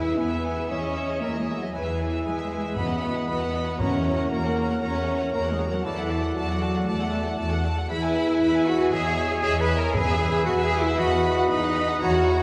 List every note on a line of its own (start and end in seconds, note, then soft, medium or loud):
0.00 0.13 E2 medium
0.00 0.41 E2 medium
0.00 0.69 E3 soft
0.00 0.73 B3 soft
0.00 0.18 E4 medium
0.00 0.57 G#4 soft
0.00 0.72 B4 soft
0.00 0.20 E5 medium
0.00 0.72 E5 soft
0.00 2.78 G#5 soft
0.05 0.19 G#4 soft
0.05 0.20 G#4 soft
0.05 0.44 B4 soft
0.05 0.18 E5 soft
0.17 0.65 E2 soft
0.17 0.70 B3 medium
0.17 0.31 E4 soft
0.17 0.30 B4 soft
0.17 0.70 B4 medium
0.17 0.30 G#5 soft
0.17 1.22 G#5 soft
0.30 2.79 E4 soft
0.30 0.44 G#4 soft
0.30 0.45 G#4 soft
0.30 0.44 E5 soft
0.44 0.58 E4 soft
0.44 0.57 B4 soft
0.44 0.73 B4 soft
0.44 0.57 G#5 soft
0.57 0.70 G#4 soft
0.57 0.71 G#4 soft
0.57 0.97 G#4 soft
0.57 0.68 E5 soft
0.69 1.16 E2 medium
0.69 1.72 E3 soft
0.69 1.22 C#4 medium
0.69 0.83 E4 soft
0.69 1.74 C#5 soft
0.69 0.83 C#5 soft
0.69 1.21 C#5 medium
0.69 1.73 D#5 soft
0.69 0.82 E5 soft
0.83 1.76 C#4 soft
0.83 0.97 G#4 soft
0.83 0.96 D#5 soft
0.83 0.97 E5 soft
0.95 1.10 E4 soft
0.95 1.61 G#4 soft
0.95 1.10 C#5 soft
0.95 1.09 E5 soft
1.08 1.23 G#4 soft
1.08 1.48 C#5 soft
1.08 1.22 D#5 soft
1.08 1.22 E5 soft
1.21 1.68 E2 medium
1.21 1.39 A#3 medium
1.21 1.30 A#3 medium
1.21 1.35 E4 soft
1.21 1.39 A#4 medium
1.21 1.34 C#5 soft
1.21 1.34 E5 soft
1.21 2.25 G#5 soft
1.35 1.54 G#3 soft
1.35 1.48 G#4 soft
1.35 1.48 D#5 soft
1.35 1.76 D#5 soft
1.35 1.49 E5 soft
1.39 1.57 G#3 medium
1.39 1.56 G#4 soft
1.47 1.62 E4 soft
1.47 1.76 C#5 soft
1.47 1.62 C#5 soft
1.47 1.60 E5 soft
1.56 1.73 F#3 medium
1.56 1.65 F#3 medium
1.56 1.64 F#4 soft
1.60 1.98 G#4 soft
1.60 1.75 G#4 soft
1.60 1.73 D#5 soft
1.60 1.74 E5 soft
1.73 2.19 E2 medium
1.73 2.25 E3 medium
1.73 2.76 E3 medium
1.73 2.25 E3 medium
1.73 2.24 E4 medium
1.73 1.86 E4 soft
1.73 3.81 B4 medium
1.73 1.86 B4 soft
1.73 2.78 E5 medium
1.73 1.86 G#5 soft
1.85 2.89 B3 soft
1.85 2.00 G#4 soft
1.85 2.01 G#4 soft
1.85 1.99 E5 soft
1.98 2.13 E4 soft
1.98 2.62 G#4 soft
1.98 2.13 B4 soft
1.98 2.12 G#5 soft
2.11 2.26 G#4 soft
2.11 2.50 B4 soft
2.11 2.25 E5 soft
2.23 2.71 E2 soft
2.23 2.77 G#3 medium
2.23 2.76 G#3 medium
2.23 2.38 E4 soft
2.23 2.76 G#4 medium
2.23 2.36 G#5 soft
2.23 2.79 G#5 soft
2.27 2.38 B4 soft
2.37 2.52 G#4 soft
2.37 2.51 E5 soft
2.51 2.65 E4 soft
2.51 3.14 B4 soft
2.51 2.65 B4 soft
2.51 2.64 G#5 soft
2.63 2.79 G#4 soft
2.63 2.77 G#4 soft
2.63 2.78 G#4 soft
2.63 2.77 E5 soft
2.76 3.49 E2 medium
2.76 3.22 E2 medium
2.76 3.78 E3 soft
2.76 3.27 B3 medium
2.76 2.89 F#4 soft
2.76 3.27 B4 medium
2.76 3.82 D#5 soft
2.76 2.89 D#5 soft
2.76 5.84 F#5 soft
2.76 2.88 B5 soft
2.88 3.03 B4 soft
2.88 3.02 F#5 soft
2.88 3.03 F#5 soft
3.01 3.66 F#4 soft
3.01 3.16 F#4 soft
3.01 3.16 D#5 soft
3.01 3.15 B5 soft
3.15 3.28 B4 soft
3.15 3.28 F#5 soft
3.15 3.29 F#5 soft
3.28 3.74 E2 medium
3.28 3.78 B3 medium
3.28 3.79 B3 medium
3.28 3.40 F#4 soft
3.28 3.81 B4 medium
3.28 3.41 D#5 soft
3.28 3.41 B5 soft
3.40 3.55 B4 soft
3.40 3.53 F#5 soft
3.40 3.54 F#5 soft
3.53 3.67 F#4 soft
3.53 3.67 D#5 soft
3.53 3.66 B5 soft
3.65 4.04 F#4 soft
3.65 3.79 B4 soft
3.65 3.79 F#5 soft
3.65 3.80 F#5 soft
3.79 4.52 E2 medium
3.79 4.25 E2 medium
3.79 4.81 E3 medium
3.79 4.30 C#4 medium
3.79 4.31 C#4 medium
3.79 3.91 F#4 soft
3.79 5.84 A#4 medium
3.79 4.31 C#5 medium
3.79 3.92 C#5 soft
3.79 5.85 C#5 medium
3.79 3.91 A#5 soft
3.92 4.94 A#3 soft
3.92 4.05 A#4 soft
3.92 4.06 A#4 soft
3.92 4.05 F#5 soft
4.05 4.68 F#4 soft
4.05 4.18 F#4 soft
4.05 4.19 C#5 soft
4.05 4.19 A#5 soft
4.18 4.55 A#4 soft
4.18 4.31 A#4 soft
4.18 4.31 F#5 soft
4.31 4.77 E2 soft
4.31 4.81 A#3 medium
4.31 4.43 F#4 soft
4.31 4.81 A#4 medium
4.31 4.44 C#5 soft
4.31 4.43 A#5 soft
4.44 4.57 A#4 soft
4.44 5.44 C#5 soft
4.44 4.57 F#5 soft
4.57 4.70 F#4 soft
4.57 4.70 C#5 soft
4.57 4.70 A#5 soft
4.69 5.06 F#4 soft
4.69 4.82 A#4 soft
4.69 4.83 F#5 soft
4.82 5.28 E2 medium
4.82 5.83 E3 soft
4.82 5.33 C#4 medium
4.82 4.94 F#4 soft
4.82 5.33 C#5 medium
4.82 4.95 C#5 medium
4.82 4.94 A#5 soft
4.94 5.87 A#3 soft
4.94 5.08 A#4 soft
4.94 5.08 F#5 soft
5.07 5.70 F#4 soft
5.07 5.21 F#4 soft
5.07 5.21 C#5 soft
5.07 5.21 A#5 soft
5.19 5.57 A#4 soft
5.19 5.33 A#4 soft
5.19 5.34 A#4 soft
5.19 5.34 F#5 soft
5.32 5.79 E2 medium
5.32 5.40 A#3 medium
5.32 5.50 A#3 medium
5.32 5.46 F#4 soft
5.32 5.41 A#4 medium
5.32 5.46 C#5 soft
5.32 5.46 A#5 soft
5.46 5.59 A#4 soft
5.46 5.60 A#4 soft
5.46 5.86 C#5 soft
5.46 5.60 F#5 soft
5.51 5.68 G#3 medium
5.51 5.69 G#4 medium
5.58 5.72 F#4 soft
5.58 5.86 A#4 soft
5.58 5.72 C#5 soft
5.58 5.73 A#5 soft
5.68 5.84 F#3 medium
5.68 5.85 F#3 medium
5.68 5.87 F#4 medium
5.68 6.09 F#4 soft
5.72 5.85 A#4 soft
5.72 5.85 F#5 soft
5.84 6.30 E2 medium
5.84 6.86 E3 medium
5.84 6.35 E3 medium
5.84 6.36 E3 medium
5.84 6.18 E4 medium
5.84 5.97 F#4 medium
5.84 7.59 A4 medium
5.84 5.97 D5 soft
5.84 7.59 D5 medium
5.84 7.59 F#5 medium
5.84 5.97 A5 soft
5.97 6.99 A3 soft
5.97 6.10 A4 soft
5.97 6.11 F#5 soft
6.10 6.23 F#4 soft
6.10 6.74 F#4 soft
6.10 6.23 D5 soft
6.10 6.23 A5 soft
6.23 6.59 A4 soft
6.23 6.36 A4 soft
6.23 6.36 F#5 soft
6.35 6.82 E2 medium
6.35 6.86 F#3 medium
6.35 6.87 F#3 medium
6.35 6.84 F#4 medium
6.35 6.48 F#4 soft
6.35 6.48 D5 soft
6.35 7.37 F#5 medium
6.35 6.48 A5 medium
6.48 6.62 A4 medium
6.48 7.50 D5 soft
6.48 6.62 F#5 soft
6.48 6.63 F#5 soft
6.62 6.75 F#4 soft
6.62 6.75 D5 soft
6.62 6.75 A5 soft
6.75 6.88 A4 soft
6.75 6.88 F#5 soft
6.87 7.33 E2 medium
6.87 7.89 E3 medium
6.87 7.39 A3 medium
6.87 7.38 A3 medium
6.87 7.00 F#4 medium
6.87 7.38 A4 medium
6.87 7.00 D5 medium
6.87 6.99 A5 medium
7.00 7.92 A3 soft
7.00 7.13 A4 soft
7.00 7.13 F#5 medium
7.00 7.14 F#5 soft
7.12 7.75 F#4 soft
7.12 7.26 F#4 soft
7.12 7.26 D5 soft
7.12 7.26 A5 soft
7.26 7.62 A4 medium
7.26 7.39 A4 soft
7.26 7.39 F#5 medium
7.26 7.39 F#5 soft
7.38 7.84 E2 medium
7.38 7.51 F#4 medium
7.38 7.51 D5 soft
7.38 7.92 F#5 medium
7.38 7.51 A5 medium
7.51 7.65 A4 soft
7.51 7.92 D5 soft
7.51 7.64 F#5 medium
7.64 7.78 F#4 soft
7.64 7.92 A4 soft
7.64 7.77 D5 soft
7.64 7.78 A5 soft
7.76 7.92 F#4 soft
7.76 7.90 A4 soft
7.76 7.90 F#5 soft
7.76 7.91 F#5 medium
7.89 8.35 E2 medium
7.89 8.91 E3 medium
7.89 8.63 E4 medium
7.89 8.64 E4 medium
7.89 8.02 G#4 medium
7.89 8.95 B4 medium
7.89 8.69 E5 medium
7.89 8.02 E5 soft
7.89 8.95 E5 medium
7.89 9.92 G#5 medium
7.89 8.03 B5 medium
8.02 8.95 B3 soft
8.02 8.16 B4 soft
8.02 8.16 G#5 medium
8.15 8.78 G#4 medium
8.15 8.29 G#4 medium
8.15 8.28 E5 medium
8.15 8.29 B5 medium
8.28 8.42 B4 soft
8.28 8.66 B4 medium
8.28 8.41 G#5 medium
8.28 8.42 G#5 medium
8.41 8.87 E2 medium
8.41 8.53 G#4 medium
8.41 8.54 E5 medium
8.41 9.42 G#5 medium
8.41 8.54 B5 medium
8.54 8.67 B4 medium
8.54 8.67 G#5 soft
8.54 8.68 G#5 soft
8.66 8.92 F#4 medium
8.66 8.93 F#4 medium
8.66 8.80 G#4 medium
8.66 8.95 B4 medium
8.66 8.80 E5 soft
8.66 8.92 F#5 medium
8.66 8.80 B5 soft
8.79 9.16 G#4 medium
8.79 8.93 B4 medium
8.79 8.93 G#5 medium
8.79 8.94 G#5 medium
8.92 9.38 E2 medium
8.92 9.93 E3 medium
8.92 9.42 G#4 medium
8.92 9.41 G#4 medium
8.92 9.96 C#5 medium
8.92 9.05 D#5 medium
8.92 9.96 D#5 medium
8.92 9.05 E5 medium
8.92 9.06 E5 medium
8.92 9.43 G#5 medium
9.05 9.97 C#4 medium
9.05 9.19 C#5 medium
9.05 9.19 E5 medium
9.05 9.19 G#5 medium
9.17 9.80 G#4 medium
9.17 9.31 D#5 soft
9.17 9.32 E5 medium
9.30 9.68 C#5 medium
9.30 9.45 C#5 medium
9.30 9.43 E5 medium
9.30 9.44 G#5 medium
9.42 9.90 E2 medium
9.42 9.60 G#4 loud
9.42 9.51 G#4 medium
9.42 9.55 D#5 medium
9.42 9.56 E5 medium
9.42 11.00 G#5 medium
9.42 9.63 G#5 medium
9.56 9.77 B4 medium
9.56 9.70 C#5 medium
9.56 9.70 E5 medium
9.56 9.70 G#5 medium
9.61 9.78 B4 medium
9.61 9.78 B5 medium
9.69 9.97 C#5 medium
9.69 9.83 D#5 medium
9.69 9.83 E5 medium
9.78 11.00 G#4 medium
9.78 9.96 A#4 medium
9.78 9.94 E5 medium
9.78 9.97 A#5 medium
9.83 9.96 C#5 medium
9.83 9.95 G#5 medium
9.94 10.68 E2 medium
9.94 10.41 E2 medium
9.94 10.97 E3 medium
9.94 10.47 G#4 loud
9.94 10.08 G#4 medium
9.94 10.46 G#4 medium
9.94 12.04 B4 medium
9.94 10.08 E5 medium
9.94 11.00 E5 medium
9.94 10.46 G#5 medium
9.94 10.08 G#5 medium
9.94 12.43 B5 medium
10.08 11.10 B3 medium
10.08 10.22 B4 medium
10.08 10.21 E5 medium
10.08 10.22 G#5 medium
10.21 10.34 G#4 medium
10.21 10.70 B4 medium
10.21 10.34 E5 medium
10.21 10.34 G#5 medium
10.33 10.84 E4 medium
10.33 10.47 B4 medium
10.33 10.46 E5 medium
10.33 10.47 G#5 medium
10.46 10.93 E2 medium
10.46 10.53 F#4 medium
10.46 10.63 F#4 medium
10.46 10.59 G#4 medium
10.46 10.60 E5 medium
10.46 10.64 F#5 medium
10.46 10.59 G#5 medium
10.46 11.48 B5 medium
10.59 10.80 G#4 medium
10.59 10.73 B4 medium
10.59 11.00 E5 medium
10.59 10.73 E5 medium
10.59 10.73 G#5 medium
10.64 10.81 G#4 medium
10.64 10.80 G#5 medium
10.73 10.86 G#4 medium
10.73 10.86 E5 medium
10.73 10.86 G#5 medium
10.81 10.99 E4 loud
10.81 10.99 E4 medium
10.81 10.98 E5 medium
10.85 11.00 E4 medium
10.85 10.99 B4 medium
10.85 10.99 E5 medium
10.85 10.99 G#5 medium
10.98 11.45 E2 medium
10.98 12.00 E3 medium
10.98 11.50 F#4 loud
10.98 11.11 F#4 medium
10.98 11.51 F#4 loud
10.98 11.10 D#5 medium
10.98 12.02 D#5 medium
10.98 11.49 F#5 medium
10.98 11.11 B5 medium
11.11 12.04 B3 medium
11.11 11.25 B4 medium
11.11 11.24 F#5 medium
11.24 11.37 F#4 medium
11.24 11.38 D#5 medium
11.24 11.37 B5 medium
11.37 11.88 D#4 medium
11.37 11.50 B4 medium
11.37 11.50 F#5 medium
11.37 11.51 F#5 medium
11.49 11.96 E2 medium
11.49 12.00 D#4 loud
11.49 12.00 D#4 medium
11.49 11.62 F#4 medium
11.49 12.01 D#5 medium
11.49 11.63 D#5 medium
11.49 12.04 B5 medium
11.49 11.62 B5 medium
11.62 11.76 B4 medium
11.62 11.76 F#5 medium
11.75 11.89 F#4 medium
11.75 12.04 B4 medium
11.75 11.90 D#5 medium
11.75 11.89 B5 medium
11.89 12.04 D#4 medium
11.89 12.02 B4 medium
11.89 12.02 F#5 medium
11.89 12.03 F#5 medium
12.01 12.43 E2 medium
12.01 12.43 E3 medium
12.01 12.14 F#4 medium
12.01 12.43 F#4 loud
12.01 12.43 C#5 medium
12.01 12.15 C#5 medium
12.01 12.43 F#5 medium
12.01 12.13 A#5 medium
12.14 12.27 A#4 medium
12.14 12.29 A#4 medium
12.14 12.27 F#5 medium
12.26 12.43 F#4 medium
12.26 12.41 F#4 medium
12.26 12.42 C#5 medium
12.26 12.40 A#5 medium
12.40 12.43 F#5 medium